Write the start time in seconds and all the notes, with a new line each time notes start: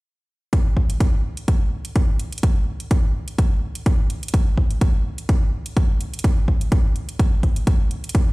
0.53 kick, closed hi-hat
0.77 kick
0.90 closed hi-hat
1.00 kick, closed hi-hat
1.37 closed hi-hat
1.48 kick, closed hi-hat
1.85 closed hi-hat
1.96 kick, closed hi-hat
2.19 closed hi-hat
2.32 closed hi-hat
2.38 closed hi-hat
2.43 kick, closed hi-hat
2.80 closed hi-hat
2.91 kick, closed hi-hat
3.28 closed hi-hat
3.38 kick, closed hi-hat
3.75 closed hi-hat
3.86 kick, closed hi-hat
4.10 closed hi-hat
4.23 closed hi-hat
4.28 closed hi-hat
4.34 kick, closed hi-hat
4.58 kick
4.71 closed hi-hat
4.81 kick, closed hi-hat
5.18 closed hi-hat
5.29 kick, closed hi-hat
5.66 closed hi-hat
5.77 kick, closed hi-hat
6.01 closed hi-hat
6.14 closed hi-hat
6.19 closed hi-hat
6.24 kick, closed hi-hat
6.48 kick
6.61 closed hi-hat
6.72 kick, closed hi-hat
6.96 closed hi-hat
7.09 closed hi-hat
7.19 kick, closed hi-hat
7.43 kick, closed hi-hat
7.56 closed hi-hat
7.67 kick, closed hi-hat
7.91 closed hi-hat
8.04 closed hi-hat
8.09 closed hi-hat
8.15 kick, closed hi-hat